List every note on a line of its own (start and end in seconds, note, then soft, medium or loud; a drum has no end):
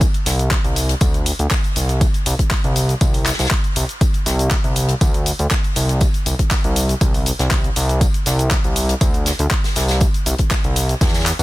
0.01 kick loud
0.01 closed hi-hat medium
0.01 tambourine medium
0.01 shaker soft
0.14 closed hi-hat soft
0.14 shaker soft
0.26 0.57 C2 loud
0.26 snare medium
0.26 open hi-hat loud
0.26 tambourine medium
0.26 shaker medium
0.39 closed hi-hat soft
0.39 shaker soft
0.51 kick loud
0.51 snare loud
0.51 clap loud
0.51 closed hi-hat medium
0.51 tambourine medium
0.51 shaker soft
0.64 0.94 C2 medium
0.64 closed hi-hat soft
0.64 shaker soft
0.76 open hi-hat loud
0.76 tambourine medium
0.76 shaker medium
0.89 closed hi-hat soft
0.89 shaker soft
1.01 1.32 D2 loud
1.01 kick loud
1.01 closed hi-hat medium
1.01 tambourine medium
1.01 shaker soft
1.14 closed hi-hat soft
1.14 shaker soft
1.26 open hi-hat loud
1.26 tambourine medium
1.26 shaker medium
1.39 1.47 D2 medium
1.39 closed hi-hat soft
1.39 shaker soft
1.50 kick loud
1.50 snare loud
1.50 clap loud
1.50 closed hi-hat medium
1.50 tambourine loud
1.50 shaker soft
1.64 closed hi-hat soft
1.64 shaker soft
1.76 2.07 C2 medium
1.76 open hi-hat loud
1.76 tambourine medium
1.76 shaker medium
1.89 closed hi-hat soft
1.89 shaker soft
2.01 kick loud
2.01 closed hi-hat medium
2.01 tambourine medium
2.01 shaker soft
2.14 closed hi-hat soft
2.14 shaker soft
2.26 2.35 C2 medium
2.26 open hi-hat loud
2.26 tambourine medium
2.26 shaker medium
2.39 kick medium
2.39 closed hi-hat soft
2.39 shaker soft
2.50 kick loud
2.50 snare loud
2.50 clap loud
2.50 closed hi-hat medium
2.50 tambourine medium
2.50 shaker soft
2.64 2.95 C2 medium
2.64 closed hi-hat soft
2.64 shaker soft
2.76 open hi-hat loud
2.76 tambourine medium
2.76 shaker medium
2.89 closed hi-hat soft
2.89 shaker soft
3.01 3.32 C2 medium
3.01 kick loud
3.01 closed hi-hat medium
3.01 tambourine medium
3.01 shaker soft
3.14 open hi-hat medium
3.14 shaker soft
3.26 snare medium
3.26 clap medium
3.26 open hi-hat loud
3.26 tambourine medium
3.26 shaker medium
3.32 snare medium
3.32 tambourine medium
3.39 3.47 C2 medium
3.39 snare medium
3.39 closed hi-hat soft
3.39 tambourine medium
3.39 shaker soft
3.45 snare loud
3.45 tambourine medium
3.51 kick loud
3.51 snare loud
3.51 clap loud
3.51 closed hi-hat medium
3.51 shaker soft
3.64 closed hi-hat soft
3.64 shaker soft
3.76 3.85 C2 medium
3.76 open hi-hat loud
3.76 tambourine medium
3.76 shaker medium
3.89 closed hi-hat soft
3.89 shaker soft
4.01 kick loud
4.01 closed hi-hat medium
4.01 tambourine medium
4.01 shaker soft
4.14 closed hi-hat soft
4.14 shaker soft
4.26 4.57 C2 loud
4.26 snare medium
4.26 open hi-hat loud
4.26 tambourine medium
4.26 shaker medium
4.39 closed hi-hat soft
4.39 shaker soft
4.50 kick loud
4.50 snare loud
4.50 clap loud
4.50 closed hi-hat medium
4.50 tambourine medium
4.50 shaker soft
4.64 4.94 C2 loud
4.64 closed hi-hat soft
4.64 shaker soft
4.76 open hi-hat loud
4.76 tambourine medium
4.76 shaker medium
4.88 closed hi-hat soft
4.88 shaker soft
5.01 5.32 D2 loud
5.01 kick loud
5.01 closed hi-hat medium
5.01 tambourine medium
5.01 shaker soft
5.14 closed hi-hat soft
5.14 shaker soft
5.26 open hi-hat loud
5.26 tambourine medium
5.26 shaker medium
5.39 5.47 D2 medium
5.39 closed hi-hat soft
5.39 shaker soft
5.51 kick loud
5.51 snare loud
5.51 clap loud
5.51 closed hi-hat medium
5.51 tambourine medium
5.51 shaker soft
5.64 closed hi-hat soft
5.64 shaker soft
5.76 6.07 C2 medium
5.76 open hi-hat loud
5.76 tambourine medium
5.76 shaker medium
5.89 closed hi-hat soft
5.89 shaker soft
6.01 kick loud
6.01 closed hi-hat medium
6.01 tambourine medium
6.01 shaker soft
6.14 closed hi-hat soft
6.14 shaker soft
6.26 6.35 C2 loud
6.26 open hi-hat loud
6.26 tambourine medium
6.26 shaker medium
6.39 kick medium
6.39 closed hi-hat soft
6.39 shaker soft
6.50 kick loud
6.50 snare loud
6.50 clap loud
6.50 closed hi-hat medium
6.50 tambourine medium
6.50 shaker soft
6.64 6.95 C2 medium
6.64 closed hi-hat soft
6.64 shaker soft
6.76 open hi-hat loud
6.76 tambourine medium
6.76 shaker medium
6.89 closed hi-hat soft
6.89 shaker soft
7.01 7.32 C2 medium
7.01 kick loud
7.01 closed hi-hat medium
7.01 tambourine medium
7.01 shaker soft
7.14 open hi-hat medium
7.14 shaker soft
7.26 open hi-hat loud
7.26 tambourine medium
7.26 shaker medium
7.39 7.69 C2 medium
7.39 snare soft
7.39 closed hi-hat soft
7.39 shaker soft
7.50 kick loud
7.50 snare loud
7.50 clap loud
7.50 closed hi-hat medium
7.50 tambourine medium
7.50 shaker soft
7.64 closed hi-hat soft
7.64 shaker soft
7.76 8.07 C2 loud
7.76 open hi-hat loud
7.76 tambourine medium
7.76 shaker medium
7.89 closed hi-hat soft
7.89 shaker soft
8.01 kick loud
8.01 closed hi-hat medium
8.01 tambourine loud
8.01 shaker soft
8.14 closed hi-hat soft
8.14 shaker soft
8.26 8.57 C2 loud
8.26 snare medium
8.26 open hi-hat loud
8.26 tambourine medium
8.26 shaker medium
8.39 closed hi-hat soft
8.39 shaker soft
8.51 kick loud
8.51 snare loud
8.51 clap loud
8.51 closed hi-hat loud
8.51 tambourine medium
8.51 shaker soft
8.64 8.95 C2 medium
8.64 closed hi-hat soft
8.64 shaker soft
8.76 open hi-hat loud
8.76 tambourine medium
8.76 shaker medium
8.89 closed hi-hat soft
8.89 shaker soft
9.01 9.32 D2 loud
9.01 kick loud
9.01 closed hi-hat loud
9.01 tambourine medium
9.01 shaker soft
9.14 closed hi-hat soft
9.14 shaker soft
9.26 snare loud
9.26 open hi-hat loud
9.26 tambourine medium
9.26 shaker medium
9.39 9.47 D2 medium
9.39 closed hi-hat soft
9.39 shaker soft
9.51 kick loud
9.51 clap loud
9.51 closed hi-hat loud
9.51 tambourine medium
9.51 shaker soft
9.64 snare loud
9.64 closed hi-hat soft
9.64 tambourine medium
9.64 shaker soft
9.76 10.07 C2 medium
9.76 snare loud
9.76 open hi-hat loud
9.76 tambourine medium
9.76 shaker medium
9.88 snare loud
9.88 closed hi-hat soft
9.88 tambourine medium
9.88 shaker soft
10.01 kick loud
10.01 closed hi-hat loud
10.01 tambourine medium
10.01 shaker soft
10.14 closed hi-hat soft
10.14 shaker soft
10.26 10.35 C2 medium
10.26 open hi-hat loud
10.26 tambourine medium
10.26 shaker medium
10.38 kick medium
10.38 closed hi-hat soft
10.38 shaker soft
10.51 kick loud
10.51 snare loud
10.51 clap loud
10.51 closed hi-hat loud
10.51 tambourine medium
10.51 shaker soft
10.64 10.94 C2 medium
10.64 closed hi-hat soft
10.64 shaker soft
10.76 open hi-hat loud
10.76 tambourine medium
10.76 shaker medium
10.89 closed hi-hat soft
10.89 shaker soft
11.01 11.32 E2 medium
11.01 kick loud
11.01 snare loud
11.01 closed hi-hat loud
11.01 tambourine medium
11.01 shaker soft
11.07 snare medium
11.07 tambourine medium
11.14 snare medium
11.14 open hi-hat medium
11.14 tambourine medium
11.14 shaker soft
11.20 snare medium
11.20 tambourine medium
11.26 snare soft
11.26 clap medium
11.26 open hi-hat loud
11.26 tambourine medium
11.26 shaker medium
11.39 11.43 E2 loud
11.39 closed hi-hat soft
11.39 tambourine medium